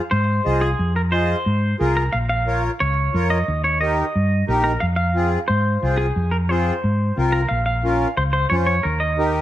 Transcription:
0.11 0.39 G#2 medium
0.11 0.63 C5 medium
0.45 0.73 C2 loud
0.45 0.69 F4 medium
0.45 0.69 G#4 medium
0.45 0.69 D#5 medium
0.61 0.96 G#4 medium
0.79 1.33 F2 medium
0.96 1.01 A#4 medium
1.12 1.36 F4 medium
1.12 1.36 G#4 medium
1.12 1.76 C5 medium
1.12 1.36 D#5 medium
1.46 1.73 G#2 medium
1.79 2.07 C2 loud
1.79 2.03 F4 medium
1.79 2.03 G#4 medium
1.79 2.03 A#4 medium
1.97 2.14 A#4 medium
2.13 2.68 A#1 loud
2.13 2.18 F5 loud
2.29 2.61 F5 medium
2.47 2.71 F4 medium
2.47 2.71 A#4 medium
2.47 2.71 C#5 medium
2.80 3.08 C#2 medium
2.80 3.30 C#5 medium
3.14 3.41 F2 loud
3.14 3.38 F4 medium
3.14 3.38 A#4 medium
3.14 3.38 C#5 medium
3.30 3.62 D#5 medium
3.48 4.02 D#2 medium
3.64 3.80 C#5 medium
3.81 4.05 D#4 medium
3.81 4.05 G4 medium
3.81 4.05 A#4 medium
3.81 4.44 D#5 medium
4.15 4.42 G2 medium
4.48 4.75 A#1 loud
4.48 4.72 D#4 medium
4.48 4.72 G4 medium
4.48 4.72 A#4 medium
4.64 4.80 A#4 medium
4.80 5.36 F2 medium
4.80 4.85 F5 loud
4.96 5.29 F5 medium
5.15 5.39 C4 medium
5.15 5.39 F4 medium
5.15 5.39 G#4 medium
5.48 5.76 G#2 medium
5.48 5.95 C5 medium
5.82 6.10 C2 loud
5.82 6.06 C4 medium
5.82 6.06 F4 medium
5.82 6.06 G#4 medium
5.97 6.33 G#4 medium
6.16 6.70 F2 medium
6.31 6.36 A#4 medium
6.49 6.73 C4 medium
6.49 6.74 F4 medium
6.49 6.74 G#4 medium
6.49 7.17 C5 medium
6.84 7.11 G#2 medium
7.17 7.44 C2 loud
7.17 7.41 C4 medium
7.17 7.41 F4 medium
7.17 7.41 A#4 medium
7.32 7.51 A#4 medium
7.49 8.04 A#1 loud
7.49 7.65 F5 medium
7.66 8.17 F5 medium
7.84 8.08 C#4 medium
7.84 8.08 F4 medium
7.84 8.08 A#4 medium
8.17 8.44 C#2 medium
8.17 8.22 C5 medium
8.33 8.49 C5 medium
8.50 8.78 F2 loud
8.50 8.75 C#4 medium
8.50 8.75 F4 medium
8.50 8.75 C5 medium
8.50 8.55 C#5 medium
8.67 8.85 C#5 medium
8.83 9.39 D#2 loud
8.83 9.01 A#4 medium
9.00 9.41 D#5 medium
9.18 9.41 D#4 medium
9.18 9.41 G4 medium
9.18 9.41 A#4 medium

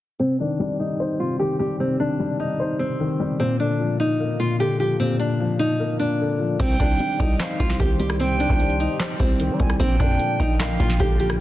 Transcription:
0.19 1.19 C3 medium
0.19 0.35 C4 medium
0.40 1.38 D#3 medium
0.40 0.78 D4 medium
0.60 1.58 G3 medium
0.80 1.17 D#4 medium
1.00 2.00 C5 medium
1.20 1.78 C3 medium
1.20 1.36 F4 medium
1.39 1.98 D#3 medium
1.39 1.55 G4 medium
1.59 2.18 G3 medium
1.59 1.75 G4 medium
1.80 2.78 C3 medium
1.80 1.96 C4 loud
2.00 2.98 D#3 medium
2.00 2.37 D4 medium
2.19 3.18 G3 medium
2.40 2.77 D#4 medium
2.60 3.40 C5 medium
2.79 3.40 C3 medium
2.79 3.36 C4 medium
3.00 3.40 D#3 medium
3.20 3.40 G3 medium
3.39 4.38 A#2 medium
3.39 3.56 C4 loud
3.60 4.58 D3 medium
3.60 3.97 D4 medium
3.80 4.78 F3 medium
4.00 4.37 D#4 medium
4.20 5.20 A#3 medium
4.40 4.98 A#2 medium
4.40 4.55 F4 medium
4.60 5.60 D3 loud
4.60 4.76 G4 medium
4.80 5.39 F3 medium
4.80 4.96 G4 medium
5.00 5.98 A#2 medium
5.00 5.16 C4 loud
5.20 5.57 D4 medium
5.40 6.38 F3 medium
5.59 5.97 D#4 medium
5.80 6.60 A#3 medium
5.99 6.60 A#2 medium
5.99 6.56 D4 medium
6.20 6.60 D3 medium
6.40 6.60 F3 medium
6.59 6.79 C2 loud
6.59 7.58 C3 medium
6.59 9.76 D#3 medium
6.59 6.75 C4 loud
6.59 9.76 G4 medium
6.59 9.76 C5 medium
6.59 11.40 G5 loud
6.59 7.36 G5 loud
6.59 kick loud
6.59 closed hi-hat medium
6.59 crash loud
6.80 6.99 C2 loud
6.80 7.78 D#3 medium
6.80 7.17 D4 medium
6.80 kick loud
6.80 closed hi-hat medium
6.99 7.98 G3 medium
6.99 closed hi-hat medium
7.20 7.39 C2 loud
7.20 7.57 D#4 medium
7.20 kick loud
7.20 closed hi-hat medium
7.40 8.40 C5 medium
7.40 7.77 F5 medium
7.40 snare loud
7.40 clap medium
7.40 closed hi-hat medium
7.60 7.79 C2 loud
7.60 8.18 C3 medium
7.60 7.76 F4 medium
7.60 kick loud
7.60 closed hi-hat medium
7.70 snare medium
7.79 8.47 C2 loud
7.79 8.38 D#3 medium
7.79 7.95 G4 medium
7.79 kick loud
7.79 closed hi-hat medium
7.99 8.58 G3 medium
7.99 8.15 G4 medium
7.99 closed hi-hat medium
8.10 cross-stick loud
8.20 9.18 C3 medium
8.20 8.36 C4 loud
8.20 8.96 G5 loud
8.20 closed hi-hat medium
8.40 9.38 D#3 medium
8.40 8.77 D4 medium
8.40 closed hi-hat medium
8.50 8.88 C2 loud
8.50 kick medium
8.59 9.58 G3 medium
8.59 closed hi-hat medium
8.70 closed hi-hat soft
8.80 9.17 D#4 medium
8.80 closed hi-hat medium
9.00 9.80 C5 medium
9.00 snare loud
9.00 clap medium
9.00 closed hi-hat medium
9.19 9.51 C2 loud
9.19 9.80 C3 medium
9.19 9.76 C4 loud
9.19 kick loud
9.19 closed hi-hat medium
9.40 9.80 D#3 loud
9.40 closed hi-hat medium
9.50 9.59 G3 loud
9.60 9.79 C2 loud
9.60 9.80 G3 medium
9.60 9.79 G#5 medium
9.60 kick loud
9.60 closed hi-hat medium
9.70 cross-stick loud
9.79 9.99 A#1 loud
9.79 10.78 A#2 medium
9.79 9.95 C4 loud
9.79 11.40 F4 medium
9.79 11.40 A#4 medium
9.79 11.40 D5 medium
9.79 10.56 G5 loud
9.79 kick loud
9.79 closed hi-hat medium
10.00 10.19 F2 loud
10.00 10.98 D3 medium
10.00 10.37 D4 medium
10.00 kick loud
10.00 closed hi-hat medium
10.19 11.18 F3 medium
10.19 closed hi-hat medium
10.40 10.78 A#1 loud
10.40 10.77 D#4 medium
10.40 kick loud
10.40 closed hi-hat medium
10.59 11.40 A#3 medium
10.59 10.97 F5 medium
10.59 snare loud
10.59 clap medium
10.59 closed hi-hat medium
10.80 10.99 A#1 loud
10.80 11.38 A#2 medium
10.80 10.96 F4 medium
10.80 kick loud
10.80 closed hi-hat medium
10.90 snare medium
11.00 11.40 A#1 loud
11.00 11.40 D3 loud
11.00 11.16 G4 medium
11.00 kick loud
11.00 closed hi-hat medium
11.20 11.40 F3 medium
11.20 11.36 G4 medium
11.20 closed hi-hat medium
11.30 cross-stick loud

